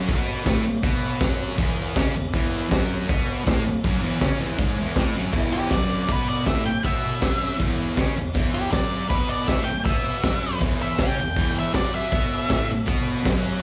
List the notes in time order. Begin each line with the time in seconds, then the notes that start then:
0.08 B2 B3, kick, crash
0.44 A2 A3, kick, snare, crash
0.65 muted distorted electric guitar stroke
0.83 B2 B3, kick, crash
1.19 F#2 F#3, kick, snare, crash
1.56 E2 E3, kick, crash
1.95 C#3 C#4, kick, snare, crash
2.15 E2
2.34 E2 E3, kick, crash, shaker
2.70 F#2 F#3, kick, snare, crash, shaker
2.90 shaker
3.07 B2 B3, kick, crash, shaker
3.26 shaker
3.45 A2 A3, kick, snare, crash, shaker
3.67 muted distorted electric guitar stroke
3.83 F#2 F#3, kick, crash, shaker
4.01 E2 E3, shaker
4.19 C#3 C#4, kick, snare, crash, shaker
4.38 E2 E3, shaker
4.58 G#2 G#3, kick, crash, shaker
4.79 E2 E3
4.96 A2 A3, kick, snare, crash, shaker
5.14 F#2 F#3, shaker
5.32 E2 E3, kick, crash, shaker
5.42 shaker
5.50 G4, shaker
5.61 shaker
5.70 F#2 F#3 D5, kick, snare, crash, shaker
5.80 shaker
5.88 shaker
6.08 B2 B3, kick, crash, shaker
6.12 B4
6.18 shaker
6.28 D5, shaker
6.37 shaker
6.46 A2 A3 E5, kick, snare, crash, shaker
6.64 G5, muted distorted electric guitar stroke, shaker
6.84 B2 B3 E5, kick, crash, shaker
6.96 shaker
7.04 shaker
7.14 shaker
7.21 F#2 F#3, kick, snare, crash, shaker
7.34 shaker
7.43 shaker
7.57 E2 E3, kick, crash
7.62 shaker
7.71 shaker
7.79 shaker
7.90 shaker
7.97 C#3 C#4, kick, snare, crash, shaker
8.15 E2, shaker
8.34 E2 E3, kick, crash, shaker
8.54 G4, shaker
8.65 shaker
8.71 F#2 F#3 D5, kick, snare, crash, shaker
8.92 shaker
9.09 B2 B3 B4, kick, crash, shaker
9.21 shaker
9.29 D5
9.40 shaker
9.47 A2 A3 E5, kick, snare, crash, shaker
9.64 G5, shaker
9.68 muted distorted electric guitar stroke
9.85 B2 B3 E5, kick, crash, shaker
9.94 shaker
10.04 shaker
10.14 shaker
10.23 F#2 F#3, kick, snare, crash, shaker
10.42 shaker
10.59 E2 E3, kick, crash, shaker
10.70 shaker
10.79 E5, shaker
10.97 C#3 C#4, kick, snare, crash, shaker
11.02 G5
11.07 shaker
11.16 E2, shaker
11.25 shaker
11.36 E2 E3, kick, crash, shaker
11.47 shaker
11.55 shaker
11.60 E5
11.64 shaker
11.73 F#2 F#3 D5, kick, snare, crash, shaker
11.84 shaker
11.93 E5, shaker
12.12 B2 B3, kick, crash, shaker
12.22 shaker
12.30 shaker
12.40 shaker
12.48 A2 A3, kick, snare, crash, shaker
12.67 muted distorted electric guitar stroke, shaker
12.86 B2 B3, kick, crash, shaker
12.97 shaker
13.06 shaker
13.17 shaker
13.23 F#2 F#3, kick, snare, crash, shaker
13.36 shaker
13.44 shaker